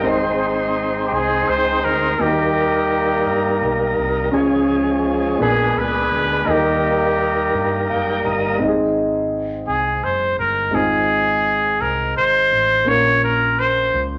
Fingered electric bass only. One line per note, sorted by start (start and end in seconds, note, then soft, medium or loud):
0.04 1.08 G#1 medium
1.12 1.45 C2 medium
1.48 1.81 C#2 medium
1.84 2.16 D2 medium
2.20 3.22 D#2 medium
3.26 3.59 G2 medium
3.61 3.94 B1 medium
3.98 4.31 C2 medium
4.33 5.36 C#2 medium
5.40 5.73 A#1 medium
5.76 6.08 C#2 medium
6.12 6.44 D2 medium
6.47 7.50 D#2 medium
7.54 7.87 G2 medium
7.90 8.22 F#1 medium
8.25 8.58 G1 medium
8.61 9.63 G#1 medium
9.68 10.00 C2 medium
10.03 10.36 F#1 medium
10.39 10.71 G1 medium
10.73 11.76 G#1 medium
11.81 12.13 C2 medium
12.16 12.49 G#1 medium
12.51 12.84 A1 medium
12.86 13.89 A#1 medium
13.94 14.19 C#2 medium